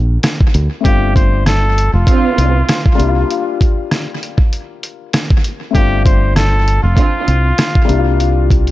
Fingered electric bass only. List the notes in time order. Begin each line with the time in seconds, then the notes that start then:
Already playing: A#1
0.55 D2
0.85 G1
1.93 F1
2.38 C2
3.00 C2
5.75 G1
6.83 F1
7.28 C2
7.89 C2